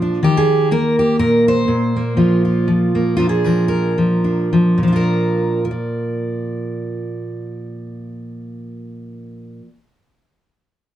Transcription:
0.00 0.21 A#2 medium
0.00 0.21 F3 medium
0.00 0.21 D4 soft
0.00 0.21 F4 soft
0.00 0.21 C5 soft
0.23 1.66 D#3 medium
0.23 0.71 G4 medium
0.37 0.72 G#4 medium
0.71 1.96 A#3 medium
0.71 0.99 A#4 medium
0.99 1.19 G4 medium
1.19 1.66 A#2 medium
1.19 1.47 A#4 medium
1.48 3.18 C5 loud
1.68 3.14 A#2 medium
1.96 2.94 A#3 soft
2.17 2.67 F3 medium
2.17 2.44 F4 soft
2.45 3.15 F4 soft
2.68 3.15 F3 medium
2.95 3.19 A#3 soft
3.17 4.75 A#2 medium
3.17 3.45 F3 soft
3.17 4.23 D4 soft
3.17 3.29 F4 medium
3.29 3.97 G#4 medium
3.44 3.97 F3 medium
3.44 3.67 A#4 medium
3.68 4.78 A#4 medium
3.98 4.51 F3 medium
4.24 4.76 D4 soft
4.53 4.82 F3 medium
4.78 9.60 A#2 medium
4.83 9.65 F3 soft
4.88 5.64 D4 soft
4.92 5.71 F4 soft
4.92 5.64 A#4 medium
5.65 9.67 A#4 medium
5.71 9.70 D5 soft

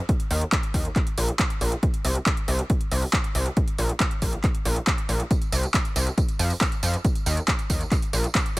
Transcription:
0.09 kick loud
0.09 closed hi-hat medium
0.20 closed hi-hat soft
0.31 0.44 D#2 loud
0.31 open hi-hat loud
0.41 closed hi-hat soft
0.52 kick loud
0.52 clap loud
0.52 closed hi-hat medium
0.63 closed hi-hat soft
0.74 0.87 D#2 loud
0.74 kick medium
0.74 open hi-hat loud
0.85 closed hi-hat medium
0.96 kick loud
0.96 clap soft
0.96 closed hi-hat medium
1.07 closed hi-hat soft
1.18 1.31 A#1 loud
1.18 open hi-hat loud
1.28 closed hi-hat soft
1.39 kick loud
1.39 clap loud
1.39 closed hi-hat medium
1.50 closed hi-hat medium
1.61 1.74 A#1 medium
1.61 open hi-hat loud
1.72 closed hi-hat medium
1.83 kick loud
1.83 closed hi-hat medium
1.94 closed hi-hat soft
2.05 2.18 C2 loud
2.05 open hi-hat loud
2.15 closed hi-hat soft
2.26 kick loud
2.26 clap loud
2.26 closed hi-hat medium
2.37 closed hi-hat soft
2.48 2.61 C2 loud
2.48 open hi-hat loud
2.59 closed hi-hat soft
2.70 kick loud
2.70 closed hi-hat medium
2.81 closed hi-hat soft
2.92 3.05 C2 loud
2.92 open hi-hat loud
3.02 open hi-hat medium
3.13 kick loud
3.13 clap loud
3.13 closed hi-hat medium
3.24 closed hi-hat medium
3.35 3.48 C2 loud
3.35 open hi-hat loud
3.46 closed hi-hat soft
3.57 kick loud
3.57 closed hi-hat medium
3.68 closed hi-hat soft
3.78 3.92 A#1 loud
3.78 open hi-hat loud
3.89 closed hi-hat medium
4.00 kick loud
4.00 clap loud
4.00 closed hi-hat medium
4.11 closed hi-hat soft
4.22 4.35 A#1 loud
4.22 kick medium
4.22 open hi-hat loud
4.33 closed hi-hat soft
4.44 kick loud
4.44 clap soft
4.44 closed hi-hat medium
4.55 closed hi-hat soft
4.65 4.79 A#1 medium
4.65 open hi-hat loud
4.76 closed hi-hat soft
4.87 kick loud
4.87 clap loud
4.87 closed hi-hat medium
4.98 closed hi-hat soft
5.09 5.22 A#1 medium
5.09 open hi-hat loud
5.20 closed hi-hat soft
5.31 kick loud
5.31 closed hi-hat medium
5.31 tambourine soft
5.42 closed hi-hat soft
5.42 tambourine soft
5.52 5.66 C2 loud
5.52 open hi-hat loud
5.52 tambourine medium
5.63 closed hi-hat medium
5.63 tambourine soft
5.74 kick loud
5.74 clap loud
5.74 closed hi-hat medium
5.74 tambourine soft
5.85 closed hi-hat soft
5.85 tambourine soft
5.96 6.09 C2 loud
5.96 open hi-hat loud
5.96 tambourine medium
6.07 closed hi-hat soft
6.07 tambourine soft
6.18 kick loud
6.18 closed hi-hat medium
6.18 tambourine soft
6.29 closed hi-hat soft
6.29 tambourine soft
6.39 6.53 F2 medium
6.39 open hi-hat loud
6.39 tambourine medium
6.50 open hi-hat medium
6.50 tambourine soft
6.61 kick loud
6.61 clap loud
6.61 closed hi-hat medium
6.61 tambourine soft
6.72 closed hi-hat soft
6.72 tambourine soft
6.83 6.96 F2 loud
6.83 open hi-hat loud
6.83 tambourine medium
6.94 closed hi-hat medium
7.05 kick loud
7.05 closed hi-hat medium
7.05 tambourine soft
7.15 closed hi-hat soft
7.15 tambourine soft
7.26 7.40 D#2 loud
7.26 open hi-hat loud
7.26 tambourine medium
7.37 closed hi-hat medium
7.37 tambourine soft
7.48 kick loud
7.48 clap loud
7.48 closed hi-hat medium
7.48 tambourine soft
7.59 closed hi-hat soft
7.59 tambourine soft
7.70 7.83 D#2 loud
7.70 kick medium
7.70 open hi-hat loud
7.70 tambourine medium
7.81 closed hi-hat medium
7.81 tambourine soft
7.92 kick loud
7.92 clap soft
7.92 closed hi-hat medium
7.92 tambourine soft
8.02 closed hi-hat soft
8.02 tambourine soft
8.13 8.26 A#1 loud
8.13 open hi-hat loud
8.13 tambourine medium
8.24 closed hi-hat soft
8.24 tambourine soft
8.35 kick loud
8.35 clap loud
8.35 closed hi-hat medium
8.35 tambourine soft
8.46 closed hi-hat soft
8.46 tambourine soft

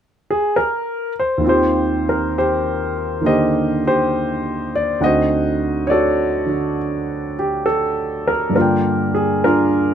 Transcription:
0.31 0.57 G#4 medium
0.56 1.12 A#4 medium
1.20 1.43 C5 medium
1.38 4.97 D#2 soft
1.38 3.20 D#3 soft
1.44 4.99 C4 soft
1.44 5.01 F4 soft
1.44 2.36 G4 medium
1.49 2.03 C5 medium
2.09 2.35 A#4 medium
2.38 3.24 G4 medium
2.38 3.25 C5 medium
3.21 4.99 D3 soft
3.21 4.99 D#3 soft
3.21 5.00 A#3 soft
3.26 3.86 G4 medium
3.26 3.86 C5 medium
3.26 3.81 D#5 medium
3.87 4.98 G4 medium
3.87 4.70 C5 medium
4.76 5.02 D5 medium
5.00 8.55 D2 soft
5.00 6.45 D3 soft
5.00 8.56 C4 soft
5.00 8.56 D#4 soft
5.00 5.82 D#5 medium
5.00 8.56 F#5 soft
5.05 5.89 F#4 medium
5.05 6.76 C5 medium
5.87 7.64 F#4 medium
5.87 5.90 C#5 medium
5.87 7.35 D5 medium
5.91 7.64 A4 medium
6.46 8.51 D3 soft
6.46 8.55 D4 soft
7.39 7.65 G4 medium
7.66 8.29 A4 medium
8.27 8.53 A#4 medium
8.50 9.94 G2 soft
8.50 9.94 D3 soft
8.55 9.94 A#3 soft
8.55 9.44 D4 soft
8.55 9.44 F4 soft
8.55 9.12 A#4 medium
8.61 9.94 G5 soft
9.15 9.44 G#4 medium
9.44 9.94 D4 medium
9.44 9.94 F4 medium
9.44 9.94 A#4 medium

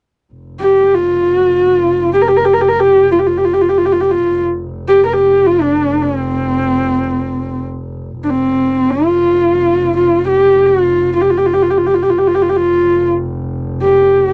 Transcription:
0.32 4.25 F1 soft
0.60 0.96 G4 medium
0.95 1.38 F4 medium
1.38 1.49 F#4 medium
1.49 2.13 F4 medium
2.14 2.23 G4 medium
2.21 2.30 A#4 medium
2.28 2.38 G4 medium
2.37 2.47 A#4 medium
2.45 2.55 G4 medium
2.53 2.63 A#4 medium
2.61 2.71 G4 medium
2.69 2.81 A#4 medium
2.80 3.11 G4 medium
3.12 3.21 F4 medium
3.19 3.28 G4 medium
3.27 3.39 F4 soft
3.37 3.46 G4 medium
3.45 3.55 F4 medium
3.54 3.63 G4 medium
3.61 3.71 F4 soft
3.69 3.79 G4 medium
3.78 3.87 F4 medium
3.86 3.94 G4 medium
3.93 4.02 F4 soft
4.01 4.12 G4 medium
4.11 4.42 F4 medium
4.26 8.19 F1 medium
4.88 5.04 G4 medium
5.05 5.15 A#4 medium
5.13 5.47 G4 medium
5.46 5.63 F4 medium
5.61 6.04 D4 medium
6.02 7.65 C4 medium
8.20 12.12 F1 medium
8.24 8.31 D4 soft
8.30 8.92 C4 medium
8.90 9.97 F4 medium
9.97 10.26 F4 medium
10.28 10.68 G4 medium
10.66 11.13 F4 medium
11.15 11.23 F4 medium
11.21 11.32 G4 medium
11.31 11.39 F4 medium
11.38 11.48 G4 medium
11.46 11.55 F4 medium
11.54 11.64 G4 medium
11.63 11.72 F4 medium
11.71 11.80 G4 medium
11.78 11.88 F4 medium
11.87 11.96 G4 medium
11.94 12.04 F4 soft
12.03 12.12 G4 medium
12.10 14.33 F1 medium
12.10 12.20 F4 medium
12.18 12.29 G4 medium
12.27 12.36 F4 medium
12.35 12.44 G4 medium
12.42 12.51 F4 medium
12.50 12.58 G4 medium
12.57 13.09 F4 medium
13.83 14.33 G4 medium

